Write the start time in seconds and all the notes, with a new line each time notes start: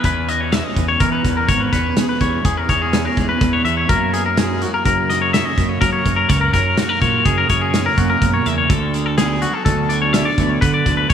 Already playing: E3 B3 C#4 E4
0.04 E2 B4, kick, closed hi-hat
0.29 E4 D#5, closed hi-hat
0.41 F#4 C#5
0.52 C#4 E5, snare, closed hi-hat
0.64 D#5
0.76 E2 B3, kick, closed hi-hat
0.88 C#5
1.00 E2 E3 A#4, kick, closed hi-hat
1.12 B4
1.25 E2 B3, kick, snare, closed hi-hat
1.37 C#4 A#4
1.48 G#1 E2 C#5, kick, closed hi-hat
1.60 B4
1.72 E2 B3 B4, kick, snare, closed hi-hat
1.86 C#4
1.96 B3 G#4, snare, closed hi-hat
2.09 B4
2.21 E2 E3 C#5, kick, closed hi-hat
2.45 E2 G#4, kick, closed hi-hat
2.57 A#4
2.69 E2 E4 C#5, kick, snare, closed hi-hat
2.82 F#4 G#4
2.93 C#4, snare, closed hi-hat
3.05 A#4
3.17 E2 G#3 G#4, kick, closed hi-hat
3.29 B3 B4
3.41 E2, kick, snare, closed hi-hat
3.53 C#5
3.65 E2 B3 E5, closed hi-hat
3.77 C#4 C#5
3.88 F#2 F#3 A#3 C#4 E4 A#4, kick, closed hi-hat
4.13 B3 G#4, closed hi-hat
4.26 C#4 A#4
4.37 A#3 G#4, snare, closed hi-hat
4.62 F#3 F#4, closed hi-hat
4.74 A#4
4.85 F#2 C#3 A#4, kick, closed hi-hat
5.10 F#4 D#5, snare, closed hi-hat
5.22 C#5
5.33 C#4 E5, snare, closed hi-hat
5.45 D#5
5.58 F#2 A#3, kick, closed hi-hat
5.69 C#5
5.81 F#2 F#3 A#4, kick, snare, closed hi-hat
5.92 C#5
6.05 F#2 B3, kick, closed hi-hat
6.16 C#4 A#4
6.29 C#2 F#2 C#5, kick, closed hi-hat
6.41 A#4
6.53 F#2 C#4 A#4, kick, snare, closed hi-hat
6.77 A#3 F#4, snare, closed hi-hat
6.89 A#4
7.00 A#2 F#3 C#5, kick, closed hi-hat
7.25 F#2 C#3 G#4, kick, closed hi-hat
7.38 A#4
7.49 F#2 E4 C#5, kick, closed hi-hat
7.62 F#4 G#4
7.73 B3, snare, closed hi-hat
7.85 C#4 A#4
7.97 F#2 A#3 F#4, kick, closed hi-hat
8.10 A#4
8.21 F#2 B2, kick, closed hi-hat
8.34 C#5
8.46 E2 C#3 E5, closed hi-hat
8.58 C#5
8.70 D2 D3 A4, kick, closed hi-hat
8.94 D4 G#4, closed hi-hat
9.06 A4
9.17 B3 G#4, snare, closed hi-hat
9.41 F#3 F#4, closed hi-hat
9.53 A4
9.65 D2 D3 A4, kick, snare, closed hi-hat
9.89 E4 D5, closed hi-hat
10.02 C#5
10.13 D4 E5, snare, closed hi-hat
10.25 D5
10.38 D2 B3, kick, closed hi-hat
10.49 C#5
10.61 D3 B4, kick, closed hi-hat
10.74 D5
10.86 D2 D4, kick, snare, closed hi-hat
10.97 B4
11.10 E2 C#5, kick, closed hi-hat